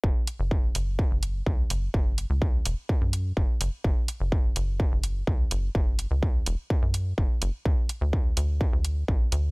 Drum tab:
HH |-o-o-o-o|-o-o-o-o|-o-o-o-o|-o-o-o-o|
BD |o-o-o-o-|o-o-o-o-|o-o-o-o-|o-o-o-o-|

HH |-o-o-o-o|
BD |o-o-o-o-|